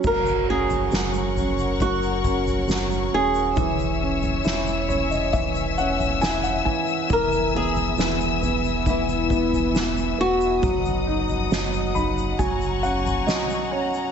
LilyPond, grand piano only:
<<
  \new Staff \with { instrumentName = "Grand piano" } { \time 4/4 \key fis \mixolydian \tempo 4 = 68 r1 | r4. cis''16 dis''16 e''8 fis''8 gis''16 fis''16 gis''8 | r1 | r4. b''8 gis''8 fis''8 dis''8 cis''8 | }
  \new Staff \with { instrumentName = "Grand piano" } { \time 4/4 \key fis \mixolydian fis8 cis'8 fis8 cis'8 fis8 cis'8 fis8 cis'8 | e8 cis'8 e'8 cis'8 e8 cis'8 e'8 e8 | e8 b8 e8 b8 e8 b8 e8 b8 | fis8 dis'8 fis8 dis'8 fis8 cis'8 fis8 cis'8 | }
>>